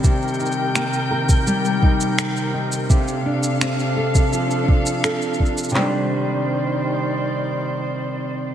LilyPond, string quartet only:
\new Staff \with { instrumentName = "String quartet" } { \time 4/4 \key c \dorian \tempo 4 = 84 << { <ees bes' g''>1 | <d' a' f''>1 | <ees c'' d''>1 | } \\ { c1~ | c1 | r1 | } >> }